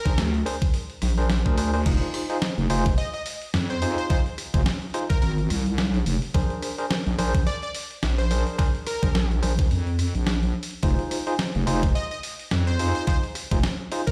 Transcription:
Already playing: A#4
0.05 A#1 D4 G#4 A#4 C5, kick, open hi-hat
0.18 D2, snare, open hi-hat
0.34 open hi-hat
0.46 D4 G#4 A#4 C5, open hi-hat
0.62 kick, open hi-hat
0.74 open hi-hat
0.90 open hi-hat
1.02 A#1, cross-stick, open hi-hat
1.18 D4 G#4 A#4 C5, open hi-hat
1.30 snare, open hi-hat
1.46 D2 D4 G#4 A#4 C5, kick
1.58 D4 G#4 A#4 C5, open hi-hat
1.73 D4 G#4 A#4 C5, open hi-hat
1.86 F1 D#4 F4 G#4 C5, kick, open hi-hat, crash
2.02 open hi-hat
2.14 cross-stick, open hi-hat
2.30 D#4 F4 G#4 C5, open hi-hat
2.42 snare, open hi-hat
2.58 F1, open hi-hat
2.70 F1 D#4 F4 G#4 C5, open hi-hat
2.86 kick, open hi-hat
2.98 D#5, open hi-hat
3.14 D#5, open hi-hat
3.26 open hi-hat
3.42 open hi-hat
3.54 F2, snare, open hi-hat
3.70 C5, open hi-hat
3.82 D#4 F4 G#4 C5, open hi-hat
3.98 C5, open hi-hat
4.10 D#4 F4 G#4 C5, kick, open hi-hat
4.26 open hi-hat
4.38 cross-stick, open hi-hat
4.54 F1 D#4 F4 G#4 C5, kick, open hi-hat
4.66 snare, open hi-hat
4.82 open hi-hat
4.90 open hi-hat
4.94 D#4 F4 G#4 C5, open hi-hat
5.10 A#4, kick, open hi-hat
5.22 G#1 A#4, open hi-hat
5.38 open hi-hat
5.50 C2, cross-stick, open hi-hat
5.66 open hi-hat
5.78 snare, open hi-hat
5.94 open hi-hat
6.06 F1, open hi-hat
6.22 open hi-hat
6.34 A#1 D4 G#4 A#4 C5, kick, open hi-hat
6.50 open hi-hat
6.62 cross-stick, open hi-hat
6.78 D4 G#4 A#4 C5, open hi-hat
6.91 snare, open hi-hat
7.06 A#1, open hi-hat
7.18 A#1 D4 G#4 A#4 C5, open hi-hat
7.34 kick, open hi-hat
7.47 D5, open hi-hat
7.62 D5, open hi-hat
7.75 open hi-hat
7.91 open hi-hat
8.03 A#1, snare, open hi-hat
8.18 C5, open hi-hat
8.31 D4 G#4 A#4 C5, open hi-hat
8.47 open hi-hat
8.58 D4 G#4 A#4 C5, kick, open hi-hat
8.75 open hi-hat
8.87 A#4, cross-stick, open hi-hat
9.03 A#1 D4 G#4 A#4 C5, kick, open hi-hat
9.15 A#1, snare, open hi-hat
9.31 open hi-hat
9.42 A#1 D4 G#4 A#4 C5, open hi-hat
9.59 kick, open hi-hat
9.71 F2, open hi-hat
9.87 open hi-hat
9.99 cross-stick, open hi-hat
10.15 A#1, open hi-hat
10.27 snare, open hi-hat
10.43 open hi-hat
10.63 open hi-hat
10.71 open hi-hat
10.83 F1 D#4 F4 G#4 C5, kick, open hi-hat
10.99 open hi-hat
11.11 cross-stick, open hi-hat
11.27 D#4 F4 G#4 C5, open hi-hat
11.39 snare, open hi-hat
11.55 F1, open hi-hat
11.67 F1 D#4 F4 G#4 C5, open hi-hat
11.83 kick, open hi-hat
11.95 D#5, open hi-hat
12.11 D#5, open hi-hat
12.23 open hi-hat
12.39 open hi-hat
12.51 F2, snare, open hi-hat
12.67 C5, open hi-hat
12.79 D#4 F4 G#4 C5, open hi-hat
12.95 C5, open hi-hat
13.07 D#4 F4 G#4 C5, kick, open hi-hat
13.23 open hi-hat
13.35 cross-stick, open hi-hat
13.51 F1 D#4 F4 G#4 C5, kick, open hi-hat
13.63 snare, open hi-hat
13.92 D#4 F4 G#4 C5, open hi-hat
14.07 A#4, kick, open hi-hat

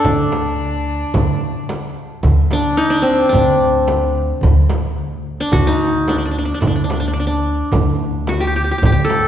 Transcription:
Already playing: D4 G4 A4
0.05 D2, frame drum, darbuka dum
0.32 darbuka tek, frame drum
0.47 darbuka ka
0.61 darbuka ka
0.76 darbuka ka
0.89 darbuka ka
1.02 darbuka ka
1.14 D2, frame drum, darbuka dum
1.42 darbuka ka
1.56 darbuka ka
1.69 darbuka tek, frame drum
1.83 darbuka ka
1.97 darbuka ka
2.23 D2, frame drum, darbuka dum
2.51 D4, darbuka tek, frame drum
2.77 D#4
2.90 D4, darbuka ka
3.02 C4
3.29 D2 D4, darbuka dum
3.34 frame drum
3.88 darbuka tek, frame drum
4.15 darbuka ka
4.41 D2, darbuka dum, frame drum
4.69 darbuka tek, frame drum
5.12 darbuka ka
5.38 D4, darbuka ka
5.52 D2 F#4, darbuka dum, frame drum
5.67 D#4
5.80 darbuka ka
6.08 D4, darbuka tek, frame drum
6.18 D4
6.25 D4
6.31 D4, darbuka ka
6.38 D4
6.45 D4
6.54 D4
6.61 D2 D4, frame drum, darbuka dum
6.67 D4
6.76 D4
6.84 D4
6.90 D4, darbuka tek, frame drum
7.00 D4
7.08 D4
7.13 D4
7.20 D4
7.27 D4
7.32 darbuka ka
7.59 darbuka ka
7.72 D2, darbuka dum, frame drum
8.00 darbuka ka
8.27 F#4, darbuka tek, frame drum
8.40 G4
8.47 G4
8.55 G4, darbuka ka
8.64 G4
8.71 G4
8.78 G4, darbuka dum
8.82 D2 G4, frame drum
8.92 G4
9.05 A4
9.10 darbuka tek, frame drum

